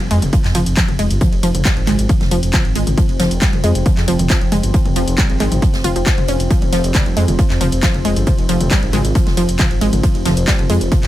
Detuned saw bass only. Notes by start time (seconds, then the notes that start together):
0.00 F1
0.11 F2
0.22 F1
0.44 F2
0.55 F1
0.66 F1
0.88 F1
0.99 F1
1.11 G1
1.33 F1
1.43 F1
1.55 F1
1.77 G#1
1.87 G#1
1.99 G#1
2.21 F1
2.31 F1
2.43 F1
2.65 G#1
2.75 G#1
2.87 G#1
3.09 F1
3.20 F1
3.31 F1
3.53 F1
3.64 F2
3.75 F1
3.97 F2
4.08 F1
4.19 F1
4.41 F1
4.52 F1
4.63 G1
4.86 F1
4.96 F1
5.08 F1
5.30 G#1
5.40 G#1
5.52 G#1
5.74 F1
5.84 F1
5.96 F1
6.18 F1
6.28 F1
6.40 F1
6.62 F1
6.73 F1
6.84 F1
7.06 F1
7.17 F2
7.28 F1
7.50 F2
7.61 F1
7.72 F1
7.94 F1
8.05 F1
8.16 G1
8.39 F1
8.49 F1
8.61 F1
8.83 G#1
8.93 G#1
9.05 G#1
9.27 F1
9.37 F1
9.49 F1
9.71 G#1
9.81 G#1
9.93 G#1
10.15 F1
10.26 F1
10.37 F1
10.59 F1
10.70 F2
10.81 F1
11.03 F2